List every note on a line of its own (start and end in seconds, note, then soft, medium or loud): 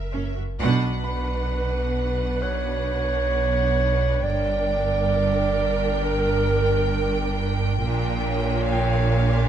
0.00 0.58 F#1 medium
0.00 0.36 A#4 soft
0.00 0.36 E5 soft
0.13 0.23 F#1 soft
0.13 0.23 F#2 soft
0.13 0.35 C#4 soft
0.36 0.46 F#2 soft
0.36 0.44 F#4 soft
0.59 4.26 B1 medium
0.59 4.21 B1 medium
0.59 4.21 B2 medium
0.59 4.20 D4 medium
0.59 4.20 B4 medium
0.59 4.20 F#5 medium
1.04 2.44 B4 medium
1.04 3.74 B5 soft
2.42 4.25 C#5 medium
2.42 5.10 F#6 soft
4.24 7.84 G1 medium
4.24 7.79 G1 medium
4.24 7.79 G2 medium
4.24 7.79 D4 soft
4.24 7.81 A#4 medium
4.24 6.04 D5 medium
4.24 8.68 G5 medium
6.04 7.36 A#4 medium
7.82 9.48 A#1 medium
7.82 9.48 A#2 medium
7.82 9.48 D4 medium
7.82 9.48 A#4 medium
8.28 9.48 C#5 medium
8.71 9.48 F5 soft
8.71 9.48 G5 medium